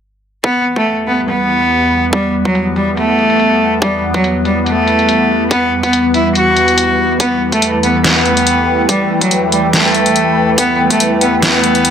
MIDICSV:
0, 0, Header, 1, 5, 480
1, 0, Start_track
1, 0, Key_signature, 1, "minor"
1, 0, Tempo, 422535
1, 498, Time_signature, 4, 2, 24, 8
1, 13523, End_track
2, 0, Start_track
2, 0, Title_t, "Analog synth pad"
2, 0, Program_c, 0, 89
2, 499, Note_on_c, 0, 64, 88
2, 729, Note_on_c, 0, 78, 79
2, 739, Note_on_c, 0, 71, 90
2, 8766, Note_on_c, 0, 79, 79
2, 8902, Note_off_c, 0, 78, 0
2, 13523, Note_off_c, 0, 64, 0
2, 13523, Note_off_c, 0, 71, 0
2, 13523, Note_off_c, 0, 79, 0
2, 13523, End_track
3, 0, Start_track
3, 0, Title_t, "Cello"
3, 0, Program_c, 1, 42
3, 498, Note_on_c, 1, 59, 87
3, 718, Note_off_c, 1, 59, 0
3, 867, Note_on_c, 1, 57, 90
3, 1084, Note_off_c, 1, 57, 0
3, 1218, Note_on_c, 1, 59, 78
3, 1371, Note_off_c, 1, 59, 0
3, 1457, Note_on_c, 1, 59, 93
3, 2329, Note_off_c, 1, 59, 0
3, 2418, Note_on_c, 1, 55, 90
3, 2638, Note_off_c, 1, 55, 0
3, 2787, Note_on_c, 1, 54, 88
3, 3004, Note_off_c, 1, 54, 0
3, 3138, Note_on_c, 1, 55, 83
3, 3291, Note_off_c, 1, 55, 0
3, 3377, Note_on_c, 1, 57, 96
3, 4249, Note_off_c, 1, 57, 0
3, 4338, Note_on_c, 1, 55, 90
3, 4558, Note_off_c, 1, 55, 0
3, 4707, Note_on_c, 1, 54, 89
3, 4924, Note_off_c, 1, 54, 0
3, 5058, Note_on_c, 1, 55, 85
3, 5211, Note_off_c, 1, 55, 0
3, 5298, Note_on_c, 1, 57, 97
3, 6169, Note_off_c, 1, 57, 0
3, 6258, Note_on_c, 1, 59, 91
3, 6478, Note_off_c, 1, 59, 0
3, 6627, Note_on_c, 1, 59, 89
3, 6844, Note_off_c, 1, 59, 0
3, 6978, Note_on_c, 1, 64, 83
3, 7131, Note_off_c, 1, 64, 0
3, 7218, Note_on_c, 1, 66, 98
3, 8089, Note_off_c, 1, 66, 0
3, 8178, Note_on_c, 1, 59, 89
3, 8398, Note_off_c, 1, 59, 0
3, 8547, Note_on_c, 1, 57, 91
3, 8764, Note_off_c, 1, 57, 0
3, 8898, Note_on_c, 1, 59, 83
3, 9051, Note_off_c, 1, 59, 0
3, 9138, Note_on_c, 1, 59, 98
3, 10009, Note_off_c, 1, 59, 0
3, 10098, Note_on_c, 1, 55, 91
3, 10318, Note_off_c, 1, 55, 0
3, 10467, Note_on_c, 1, 54, 90
3, 10684, Note_off_c, 1, 54, 0
3, 10818, Note_on_c, 1, 55, 82
3, 10971, Note_off_c, 1, 55, 0
3, 11057, Note_on_c, 1, 57, 97
3, 11929, Note_off_c, 1, 57, 0
3, 12018, Note_on_c, 1, 59, 93
3, 12238, Note_off_c, 1, 59, 0
3, 12387, Note_on_c, 1, 57, 92
3, 12604, Note_off_c, 1, 57, 0
3, 12738, Note_on_c, 1, 59, 83
3, 12891, Note_off_c, 1, 59, 0
3, 12978, Note_on_c, 1, 59, 99
3, 13523, Note_off_c, 1, 59, 0
3, 13523, End_track
4, 0, Start_track
4, 0, Title_t, "Ambient pad"
4, 0, Program_c, 2, 92
4, 498, Note_on_c, 2, 40, 78
4, 498, Note_on_c, 2, 52, 70
4, 498, Note_on_c, 2, 55, 70
4, 498, Note_on_c, 2, 59, 86
4, 8133, Note_off_c, 2, 59, 0
4, 8178, Note_on_c, 2, 57, 85
4, 13523, Note_off_c, 2, 40, 0
4, 13523, Note_off_c, 2, 52, 0
4, 13523, Note_off_c, 2, 55, 0
4, 13523, Note_off_c, 2, 57, 0
4, 13523, End_track
5, 0, Start_track
5, 0, Title_t, "Drums"
5, 498, Note_on_c, 9, 36, 114
5, 498, Note_on_c, 9, 42, 78
5, 611, Note_off_c, 9, 36, 0
5, 612, Note_off_c, 9, 42, 0
5, 867, Note_on_c, 9, 36, 56
5, 867, Note_on_c, 9, 42, 51
5, 978, Note_off_c, 9, 42, 0
5, 978, Note_on_c, 9, 42, 76
5, 981, Note_off_c, 9, 36, 0
5, 1092, Note_off_c, 9, 42, 0
5, 1218, Note_on_c, 9, 42, 50
5, 1331, Note_off_c, 9, 42, 0
5, 1458, Note_on_c, 9, 42, 76
5, 1571, Note_off_c, 9, 42, 0
5, 1698, Note_on_c, 9, 42, 51
5, 1811, Note_off_c, 9, 42, 0
5, 1827, Note_on_c, 9, 42, 50
5, 1937, Note_off_c, 9, 42, 0
5, 1937, Note_on_c, 9, 42, 76
5, 2051, Note_off_c, 9, 42, 0
5, 2418, Note_on_c, 9, 36, 117
5, 2418, Note_on_c, 9, 42, 77
5, 2531, Note_off_c, 9, 36, 0
5, 2531, Note_off_c, 9, 42, 0
5, 2787, Note_on_c, 9, 36, 58
5, 2787, Note_on_c, 9, 42, 53
5, 2898, Note_off_c, 9, 42, 0
5, 2898, Note_on_c, 9, 42, 79
5, 2900, Note_off_c, 9, 36, 0
5, 3011, Note_off_c, 9, 42, 0
5, 3138, Note_on_c, 9, 42, 53
5, 3251, Note_off_c, 9, 42, 0
5, 3378, Note_on_c, 9, 42, 75
5, 3491, Note_off_c, 9, 42, 0
5, 3617, Note_on_c, 9, 42, 51
5, 3731, Note_off_c, 9, 42, 0
5, 3747, Note_on_c, 9, 42, 54
5, 3857, Note_off_c, 9, 42, 0
5, 3857, Note_on_c, 9, 42, 77
5, 3971, Note_off_c, 9, 42, 0
5, 4338, Note_on_c, 9, 36, 118
5, 4338, Note_on_c, 9, 42, 75
5, 4451, Note_off_c, 9, 36, 0
5, 4451, Note_off_c, 9, 42, 0
5, 4707, Note_on_c, 9, 36, 60
5, 4707, Note_on_c, 9, 42, 49
5, 4818, Note_off_c, 9, 42, 0
5, 4818, Note_on_c, 9, 42, 77
5, 4821, Note_off_c, 9, 36, 0
5, 4931, Note_off_c, 9, 42, 0
5, 5058, Note_on_c, 9, 42, 50
5, 5171, Note_off_c, 9, 42, 0
5, 5298, Note_on_c, 9, 42, 75
5, 5411, Note_off_c, 9, 42, 0
5, 5538, Note_on_c, 9, 42, 52
5, 5651, Note_off_c, 9, 42, 0
5, 5667, Note_on_c, 9, 42, 52
5, 5778, Note_off_c, 9, 42, 0
5, 5778, Note_on_c, 9, 42, 78
5, 5891, Note_off_c, 9, 42, 0
5, 6258, Note_on_c, 9, 36, 117
5, 6258, Note_on_c, 9, 42, 75
5, 6371, Note_off_c, 9, 36, 0
5, 6371, Note_off_c, 9, 42, 0
5, 6627, Note_on_c, 9, 36, 58
5, 6627, Note_on_c, 9, 42, 50
5, 6738, Note_off_c, 9, 42, 0
5, 6738, Note_on_c, 9, 42, 74
5, 6741, Note_off_c, 9, 36, 0
5, 6852, Note_off_c, 9, 42, 0
5, 6978, Note_on_c, 9, 42, 48
5, 7091, Note_off_c, 9, 42, 0
5, 7218, Note_on_c, 9, 42, 71
5, 7332, Note_off_c, 9, 42, 0
5, 7458, Note_on_c, 9, 42, 50
5, 7571, Note_off_c, 9, 42, 0
5, 7587, Note_on_c, 9, 42, 50
5, 7698, Note_off_c, 9, 42, 0
5, 7698, Note_on_c, 9, 42, 76
5, 7811, Note_off_c, 9, 42, 0
5, 8178, Note_on_c, 9, 36, 112
5, 8178, Note_on_c, 9, 42, 74
5, 8291, Note_off_c, 9, 42, 0
5, 8292, Note_off_c, 9, 36, 0
5, 8547, Note_on_c, 9, 36, 57
5, 8547, Note_on_c, 9, 42, 48
5, 8658, Note_off_c, 9, 42, 0
5, 8658, Note_on_c, 9, 42, 71
5, 8661, Note_off_c, 9, 36, 0
5, 8772, Note_off_c, 9, 42, 0
5, 8898, Note_on_c, 9, 42, 47
5, 9011, Note_off_c, 9, 42, 0
5, 9138, Note_on_c, 9, 38, 108
5, 9138, Note_on_c, 9, 42, 72
5, 9251, Note_off_c, 9, 38, 0
5, 9251, Note_off_c, 9, 42, 0
5, 9378, Note_on_c, 9, 42, 46
5, 9491, Note_off_c, 9, 42, 0
5, 9507, Note_on_c, 9, 42, 47
5, 9618, Note_off_c, 9, 42, 0
5, 9618, Note_on_c, 9, 42, 72
5, 9731, Note_off_c, 9, 42, 0
5, 10098, Note_on_c, 9, 36, 110
5, 10098, Note_on_c, 9, 42, 74
5, 10211, Note_off_c, 9, 36, 0
5, 10211, Note_off_c, 9, 42, 0
5, 10467, Note_on_c, 9, 36, 55
5, 10467, Note_on_c, 9, 42, 48
5, 10578, Note_off_c, 9, 42, 0
5, 10578, Note_on_c, 9, 42, 71
5, 10581, Note_off_c, 9, 36, 0
5, 10691, Note_off_c, 9, 42, 0
5, 10817, Note_on_c, 9, 42, 47
5, 10931, Note_off_c, 9, 42, 0
5, 11057, Note_on_c, 9, 38, 109
5, 11057, Note_on_c, 9, 42, 69
5, 11171, Note_off_c, 9, 38, 0
5, 11171, Note_off_c, 9, 42, 0
5, 11298, Note_on_c, 9, 42, 49
5, 11411, Note_off_c, 9, 42, 0
5, 11427, Note_on_c, 9, 42, 48
5, 11538, Note_off_c, 9, 42, 0
5, 11538, Note_on_c, 9, 42, 70
5, 11651, Note_off_c, 9, 42, 0
5, 12018, Note_on_c, 9, 36, 108
5, 12018, Note_on_c, 9, 42, 75
5, 12131, Note_off_c, 9, 36, 0
5, 12132, Note_off_c, 9, 42, 0
5, 12387, Note_on_c, 9, 36, 54
5, 12387, Note_on_c, 9, 42, 50
5, 12498, Note_off_c, 9, 42, 0
5, 12498, Note_on_c, 9, 42, 75
5, 12501, Note_off_c, 9, 36, 0
5, 12612, Note_off_c, 9, 42, 0
5, 12738, Note_on_c, 9, 42, 50
5, 12852, Note_off_c, 9, 42, 0
5, 12978, Note_on_c, 9, 38, 106
5, 12978, Note_on_c, 9, 42, 73
5, 13091, Note_off_c, 9, 38, 0
5, 13091, Note_off_c, 9, 42, 0
5, 13218, Note_on_c, 9, 42, 50
5, 13332, Note_off_c, 9, 42, 0
5, 13347, Note_on_c, 9, 42, 48
5, 13458, Note_off_c, 9, 42, 0
5, 13458, Note_on_c, 9, 42, 74
5, 13523, Note_off_c, 9, 42, 0
5, 13523, End_track
0, 0, End_of_file